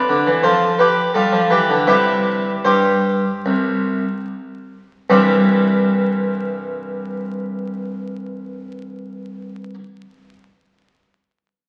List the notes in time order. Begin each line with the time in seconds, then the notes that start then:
Already playing: B4 D5
0.09 D3
0.27 E3
0.43 F3 A4 C5
0.79 G4 B4
1.14 G3 F4 A4
1.32 F3
1.50 E3 G4 B4
1.70 D3
1.87 C3 G3 E4 G4 B4
2.65 G2 G4 C5
3.46 C2
5.10 C2 G2 E3 G3 C4 E4